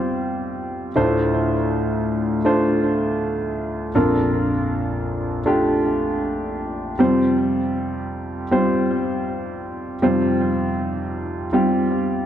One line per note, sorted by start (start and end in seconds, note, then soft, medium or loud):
0.00 0.92 F2 soft
0.00 0.92 C3 medium
0.00 0.88 G3 medium
0.00 0.88 C4 medium
0.00 0.88 F4 medium
0.00 0.88 C5 medium
0.96 3.91 D2 medium
0.96 3.91 A2 medium
0.96 2.38 A3 medium
0.96 2.38 D4 medium
0.96 2.38 F4 medium
0.96 2.38 C5 medium
2.45 3.87 A3 medium
2.45 3.88 D4 medium
2.45 3.88 F4 medium
2.45 3.88 C5 medium
3.95 6.95 A#1 medium
3.95 6.95 F2 medium
3.95 5.39 D4 medium
3.95 5.39 F4 medium
3.95 5.39 A4 medium
3.95 5.39 A#4 medium
5.46 6.91 A3 medium
5.46 6.91 D4 medium
5.46 6.92 F4 medium
5.46 6.92 G4 medium
6.99 9.99 F2 medium
6.99 9.99 C3 medium
6.99 8.44 G3 medium
6.99 8.44 C4 medium
6.99 8.44 F4 medium
6.99 8.44 C5 medium
8.51 9.95 G3 medium
8.51 9.95 C4 medium
8.51 9.95 F4 medium
8.51 9.95 C5 medium
10.02 12.26 F2 medium
10.02 12.26 C3 medium
10.02 11.45 G3 medium
10.02 11.45 C4 medium
10.02 11.46 F4 medium
10.02 11.46 C5 medium
11.53 12.26 G3 medium
11.53 12.26 C4 medium
11.53 12.26 F4 medium
11.53 12.26 G4 medium